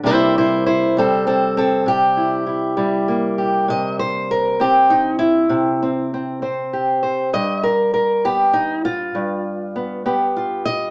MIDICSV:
0, 0, Header, 1, 2, 480
1, 0, Start_track
1, 0, Tempo, 606061
1, 37, Time_signature, 12, 3, 24, 8
1, 8637, End_track
2, 0, Start_track
2, 0, Title_t, "Steel-string acoustic guitar"
2, 0, Program_c, 0, 25
2, 28, Note_on_c, 0, 48, 75
2, 31, Note_on_c, 0, 55, 51
2, 40, Note_on_c, 0, 58, 50
2, 46, Note_on_c, 0, 64, 97
2, 52, Note_on_c, 0, 72, 119
2, 283, Note_off_c, 0, 64, 0
2, 284, Note_off_c, 0, 72, 0
2, 300, Note_on_c, 0, 64, 71
2, 301, Note_on_c, 0, 72, 85
2, 516, Note_off_c, 0, 64, 0
2, 516, Note_off_c, 0, 72, 0
2, 525, Note_on_c, 0, 64, 80
2, 527, Note_on_c, 0, 72, 91
2, 763, Note_off_c, 0, 64, 0
2, 763, Note_off_c, 0, 72, 0
2, 764, Note_off_c, 0, 55, 0
2, 767, Note_on_c, 0, 55, 60
2, 775, Note_off_c, 0, 58, 0
2, 779, Note_on_c, 0, 60, 80
2, 785, Note_on_c, 0, 69, 96
2, 996, Note_off_c, 0, 60, 0
2, 998, Note_off_c, 0, 69, 0
2, 1005, Note_on_c, 0, 60, 75
2, 1009, Note_on_c, 0, 69, 82
2, 1235, Note_off_c, 0, 60, 0
2, 1245, Note_off_c, 0, 69, 0
2, 1245, Note_on_c, 0, 60, 82
2, 1254, Note_on_c, 0, 69, 90
2, 1470, Note_off_c, 0, 48, 0
2, 1473, Note_on_c, 0, 48, 72
2, 1483, Note_off_c, 0, 60, 0
2, 1486, Note_off_c, 0, 69, 0
2, 1489, Note_on_c, 0, 67, 106
2, 1718, Note_on_c, 0, 64, 49
2, 1943, Note_off_c, 0, 64, 0
2, 1952, Note_on_c, 0, 64, 53
2, 2184, Note_off_c, 0, 64, 0
2, 2189, Note_off_c, 0, 55, 0
2, 2192, Note_on_c, 0, 55, 67
2, 2194, Note_on_c, 0, 64, 47
2, 2441, Note_on_c, 0, 58, 57
2, 2447, Note_off_c, 0, 67, 0
2, 2678, Note_on_c, 0, 67, 53
2, 2891, Note_off_c, 0, 64, 0
2, 2907, Note_off_c, 0, 48, 0
2, 2917, Note_on_c, 0, 48, 76
2, 2928, Note_off_c, 0, 67, 0
2, 2931, Note_on_c, 0, 75, 107
2, 3160, Note_off_c, 0, 75, 0
2, 3163, Note_on_c, 0, 72, 96
2, 3404, Note_off_c, 0, 72, 0
2, 3413, Note_on_c, 0, 70, 97
2, 3638, Note_off_c, 0, 55, 0
2, 3641, Note_on_c, 0, 60, 65
2, 3649, Note_off_c, 0, 70, 0
2, 3652, Note_on_c, 0, 67, 96
2, 3878, Note_off_c, 0, 58, 0
2, 3881, Note_on_c, 0, 63, 86
2, 3888, Note_off_c, 0, 67, 0
2, 4105, Note_off_c, 0, 63, 0
2, 4108, Note_on_c, 0, 64, 95
2, 4342, Note_off_c, 0, 48, 0
2, 4352, Note_on_c, 0, 48, 78
2, 4603, Note_off_c, 0, 60, 0
2, 4614, Note_on_c, 0, 60, 50
2, 4849, Note_off_c, 0, 60, 0
2, 4861, Note_on_c, 0, 60, 49
2, 5076, Note_off_c, 0, 64, 0
2, 5077, Note_off_c, 0, 60, 0
2, 5085, Note_on_c, 0, 60, 65
2, 5091, Note_on_c, 0, 72, 44
2, 5333, Note_on_c, 0, 67, 52
2, 5557, Note_off_c, 0, 72, 0
2, 5566, Note_on_c, 0, 72, 50
2, 5776, Note_off_c, 0, 60, 0
2, 5776, Note_off_c, 0, 72, 0
2, 5797, Note_off_c, 0, 48, 0
2, 5807, Note_on_c, 0, 43, 74
2, 5811, Note_on_c, 0, 75, 108
2, 6043, Note_off_c, 0, 67, 0
2, 6046, Note_on_c, 0, 70, 84
2, 6047, Note_off_c, 0, 75, 0
2, 6277, Note_off_c, 0, 70, 0
2, 6286, Note_on_c, 0, 70, 87
2, 6524, Note_off_c, 0, 70, 0
2, 6532, Note_on_c, 0, 59, 64
2, 6534, Note_on_c, 0, 67, 103
2, 6759, Note_on_c, 0, 63, 90
2, 6767, Note_off_c, 0, 67, 0
2, 7000, Note_off_c, 0, 63, 0
2, 7008, Note_on_c, 0, 65, 97
2, 7241, Note_off_c, 0, 43, 0
2, 7244, Note_on_c, 0, 43, 72
2, 7718, Note_off_c, 0, 59, 0
2, 7727, Note_on_c, 0, 59, 52
2, 7955, Note_off_c, 0, 59, 0
2, 7963, Note_off_c, 0, 65, 0
2, 7965, Note_on_c, 0, 59, 65
2, 7969, Note_on_c, 0, 67, 50
2, 8209, Note_on_c, 0, 65, 56
2, 8438, Note_on_c, 0, 75, 122
2, 8637, Note_off_c, 0, 43, 0
2, 8637, Note_off_c, 0, 59, 0
2, 8637, Note_off_c, 0, 65, 0
2, 8637, Note_off_c, 0, 67, 0
2, 8637, Note_off_c, 0, 75, 0
2, 8637, End_track
0, 0, End_of_file